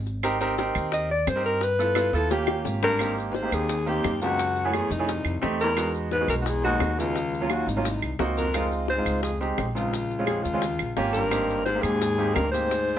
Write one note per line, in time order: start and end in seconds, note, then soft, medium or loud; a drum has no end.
0.00 0.70 G#1 medium
0.06 high bongo soft
0.06 maracas soft
0.23 0.36 C4 medium
0.23 0.36 D#4 medium
0.23 0.36 G4 medium
0.23 0.36 A#4 loud
0.23 high bongo medium
0.23 claves medium
0.23 maracas medium
0.41 0.53 C4 loud
0.41 0.53 D#4 medium
0.41 0.53 G4 loud
0.41 0.54 A#4 loud
0.41 high bongo soft
0.41 maracas medium
0.58 1.06 C4 medium
0.58 1.07 D#4 medium
0.58 1.07 G4 medium
0.58 1.07 A#4 loud
0.58 high bongo medium
0.58 maracas medium
0.75 1.24 D#2 loud
0.75 claves medium
0.75 maracas soft
0.92 1.09 D#5 loud
0.92 high bongo medium
0.92 maracas medium
1.10 1.30 D5 loud
1.10 high bongo soft
1.27 2.08 G2 medium
1.27 1.45 C5 loud
1.27 high bongo soft
1.27 low bongo medium
1.27 claves medium
1.27 maracas medium
1.36 1.62 C4 medium
1.36 1.62 D#4 medium
1.36 1.62 G4 medium
1.36 1.62 A#4 medium
1.44 1.65 A#4 loud
1.44 high bongo soft
1.44 maracas soft
1.61 2.14 B4 loud
1.61 high bongo medium
1.61 maracas medium
1.79 1.91 B3 medium
1.79 1.91 E4 medium
1.79 1.92 F4 medium
1.79 1.92 A4 medium
1.79 high bongo soft
1.79 maracas medium
1.95 2.08 B3 medium
1.95 2.08 E4 medium
1.95 2.08 F4 medium
1.95 2.08 A4 medium
1.95 high bongo medium
1.95 claves medium
1.95 maracas medium
2.13 2.62 D#2 loud
2.13 2.31 B3 medium
2.13 2.31 E4 medium
2.13 2.29 F4 medium
2.13 2.31 A4 medium
2.13 2.34 A4 loud
2.13 maracas soft
2.30 2.86 A#3 medium
2.30 2.86 C#4 medium
2.30 2.86 F4 medium
2.30 2.87 G4 medium
2.30 2.66 G4 medium
2.30 high bongo medium
2.30 maracas medium
2.47 high bongo medium
2.47 claves medium
2.65 3.46 G#1 medium
2.65 low bongo medium
2.65 maracas medium
2.83 3.15 G2 loud
2.83 3.16 A#4 loud
2.83 low bongo medium
2.83 maracas soft
2.99 3.30 A#3 medium
2.99 3.30 C4 medium
2.99 3.31 D#4 medium
2.99 3.31 G4 medium
2.99 high bongo medium
2.99 claves medium
2.99 maracas medium
3.17 high bongo soft
3.17 maracas soft
3.31 3.37 G2 medium
3.31 3.37 B4 medium
3.31 high bongo medium
3.35 3.54 G#2 medium
3.35 3.56 C5 medium
3.35 maracas soft
3.42 3.73 A#3 medium
3.42 3.73 C4 medium
3.42 3.74 D#4 medium
3.42 3.74 G4 medium
3.52 4.00 D#2 medium
3.52 3.87 D#2 medium
3.52 3.89 G#4 loud
3.52 claves medium
3.52 maracas medium
3.69 high bongo medium
3.69 maracas medium
3.86 4.21 D#2 medium
3.86 4.11 A#3 medium
3.86 4.11 C4 medium
3.86 4.11 D#4 medium
3.86 4.11 G4 medium
3.86 4.22 G4 medium
3.86 high bongo soft
3.86 maracas soft
4.04 4.85 F#2 medium
4.04 high bongo medium
4.04 low bongo medium
4.04 claves medium
4.04 maracas soft
4.21 4.76 C#2 medium
4.21 4.39 A#3 medium
4.21 4.39 C4 medium
4.21 4.39 D#4 medium
4.21 4.76 F#4 loud
4.21 4.39 G4 medium
4.21 high bongo soft
4.21 maracas medium
4.39 high bongo medium
4.39 maracas medium
4.56 high bongo soft
4.56 maracas soft
4.65 4.89 A3 medium
4.65 4.89 C#4 medium
4.65 4.89 E4 medium
4.65 4.89 G#4 medium
4.74 4.93 E2 medium
4.74 4.93 G#4 medium
4.74 high bongo medium
4.74 claves medium
4.74 maracas soft
4.91 5.43 C2 medium
4.91 5.23 F2 medium
4.91 5.43 D#4 medium
4.91 high bongo soft
4.91 maracas medium
4.99 5.08 A3 medium
4.99 5.08 C#4 medium
4.99 5.08 E4 medium
4.99 5.08 G#4 medium
5.08 high bongo medium
5.08 maracas medium
5.25 5.41 F2 medium
5.25 high bongo soft
5.25 claves medium
5.25 maracas soft
5.42 6.23 E2 medium
5.42 5.66 A3 loud
5.42 5.66 C4 medium
5.42 5.67 D#4 medium
5.42 5.67 G4 loud
5.42 high bongo medium
5.42 low bongo medium
5.42 maracas soft
5.61 5.93 E2 medium
5.61 5.93 A#4 loud
5.61 maracas medium
5.77 6.07 G#3 medium
5.77 6.07 B3 medium
5.77 6.08 D#4 medium
5.77 6.08 F#4 medium
5.77 high bongo medium
5.77 claves medium
5.77 maracas medium
5.95 high bongo soft
5.95 maracas soft
6.11 6.28 G#2 medium
6.11 6.28 B4 medium
6.11 high bongo medium
6.11 maracas soft
6.21 6.51 G#3 medium
6.21 6.51 B3 medium
6.21 6.51 D#4 medium
6.21 6.51 F#4 medium
6.28 6.77 B1 medium
6.28 6.35 F#2 medium
6.28 6.35 A#4 medium
6.28 claves medium
6.28 maracas medium
6.42 6.49 D#2 medium
6.42 6.50 F#4 medium
6.46 6.64 E2 medium
6.46 6.64 G#4 medium
6.46 high bongo medium
6.46 maracas medium
6.64 6.97 D#2 medium
6.64 6.88 G#3 medium
6.64 6.88 B3 medium
6.64 6.88 D#4 medium
6.64 6.88 F#4 medium
6.64 6.96 F#4 medium
6.64 high bongo soft
6.64 maracas soft
6.80 7.62 D#2 medium
6.80 high bongo medium
6.80 low bongo medium
6.80 claves medium
6.80 maracas soft
6.98 7.52 C#2 medium
6.98 7.16 G#3 medium
6.98 7.16 B3 medium
6.98 7.16 D#4 medium
6.98 7.53 F4 medium
6.98 7.16 F#4 medium
6.98 high bongo soft
6.98 maracas medium
7.16 high bongo medium
7.16 maracas medium
7.33 high bongo soft
7.33 maracas soft
7.41 7.66 F#3 medium
7.41 7.66 A#3 medium
7.41 7.66 C#4 medium
7.41 7.66 F4 medium
7.50 7.70 D#2 medium
7.50 7.70 F#4 medium
7.50 high bongo medium
7.50 claves medium
7.50 maracas soft
7.67 7.99 G#1 medium
7.67 8.20 C2 medium
7.67 8.20 D#4 medium
7.67 high bongo soft
7.67 maracas medium
7.77 7.85 F#3 medium
7.77 7.85 A#3 medium
7.77 7.85 C#4 medium
7.77 7.86 F4 medium
7.85 high bongo medium
7.85 maracas medium
8.02 8.18 C2 medium
8.02 high bongo soft
8.02 claves medium
8.02 maracas soft
8.19 9.01 C#2 medium
8.19 8.44 A#3 medium
8.19 8.44 C4 medium
8.19 8.44 D#4 medium
8.19 8.44 F#4 medium
8.19 high bongo medium
8.19 low bongo medium
8.19 maracas soft
8.37 8.70 F2 medium
8.37 8.69 A#4 medium
8.37 maracas medium
8.54 8.85 G#3 medium
8.54 8.85 C4 medium
8.54 8.85 D#4 medium
8.54 8.85 F4 medium
8.54 high bongo medium
8.54 claves medium
8.54 maracas medium
8.71 high bongo soft
8.71 maracas soft
8.88 9.21 G#2 medium
8.88 9.22 C5 medium
8.88 high bongo medium
8.88 maracas soft
8.98 9.28 G#3 medium
8.98 9.28 C4 medium
8.98 9.28 D#4 medium
8.98 9.29 F4 medium
9.06 9.54 C#2 medium
9.06 claves medium
9.06 maracas medium
9.23 9.40 F2 medium
9.23 9.39 G#4 medium
9.23 high bongo medium
9.23 maracas medium
9.41 9.65 G#3 medium
9.41 9.65 C4 medium
9.41 9.65 D#4 medium
9.41 9.65 G4 medium
9.41 high bongo soft
9.41 maracas soft
9.58 10.39 A#1 medium
9.58 high bongo medium
9.58 low bongo medium
9.58 claves medium
9.58 maracas soft
9.75 10.24 C#2 medium
9.75 9.93 G#3 medium
9.75 9.93 C4 medium
9.75 9.93 D#4 medium
9.75 10.24 F4 medium
9.75 9.93 F4 medium
9.75 high bongo soft
9.75 maracas medium
9.93 high bongo medium
9.93 maracas medium
10.11 high bongo soft
10.11 maracas soft
10.19 10.43 G#3 medium
10.19 10.43 C4 medium
10.19 10.44 C#4 medium
10.19 10.44 F4 medium
10.27 10.44 F2 medium
10.27 10.45 G#4 medium
10.27 high bongo medium
10.27 claves medium
10.27 maracas soft
10.43 10.96 C#2 medium
10.43 10.77 D#2 medium
10.43 10.96 F4 medium
10.43 high bongo soft
10.43 maracas medium
10.53 10.62 G#3 medium
10.53 10.62 C4 medium
10.53 10.63 C#4 medium
10.53 10.63 F4 medium
10.62 high bongo medium
10.62 maracas medium
10.79 10.96 A#1 medium
10.79 high bongo soft
10.79 claves medium
10.79 maracas soft
10.97 11.78 G#1 medium
10.97 11.21 A#3 loud
10.97 11.22 C#4 medium
10.97 11.22 F4 medium
10.97 11.22 G4 loud
10.97 high bongo medium
10.97 low bongo medium
10.97 maracas soft
11.12 11.62 G2 medium
11.12 11.62 A#4 loud
11.12 maracas medium
11.31 11.62 A#3 medium
11.31 11.62 C4 medium
11.31 11.62 D#4 medium
11.31 11.62 G4 medium
11.31 high bongo medium
11.31 claves medium
11.31 maracas medium
11.49 high bongo soft
11.49 maracas soft
11.65 11.84 G#2 medium
11.65 11.84 C5 loud
11.65 high bongo medium
11.65 maracas soft
11.75 12.06 A#3 medium
11.75 12.06 C4 medium
11.75 12.06 D#4 medium
11.75 12.06 G4 medium
11.82 12.37 D#2 medium
11.82 12.32 G#2 loud
11.82 12.36 G#4 loud
11.82 claves medium
11.82 maracas medium
12.02 high bongo medium
12.02 maracas medium
12.18 12.43 A#3 medium
12.18 12.43 C4 medium
12.18 12.43 D#4 medium
12.18 12.43 G4 medium
12.18 high bongo soft
12.18 maracas soft
12.34 12.99 D2 medium
12.34 12.51 G2 medium
12.34 12.51 A#4 loud
12.34 high bongo medium
12.34 low bongo medium
12.34 claves medium
12.34 maracas soft
12.52 12.99 G#2 medium
12.52 12.71 A#3 medium
12.52 12.71 C4 medium
12.52 12.71 D#4 medium
12.52 12.71 G4 medium
12.52 12.99 C5 loud
12.52 high bongo soft
12.52 maracas medium
12.71 high bongo medium
12.71 maracas medium
12.88 high bongo soft
12.88 maracas soft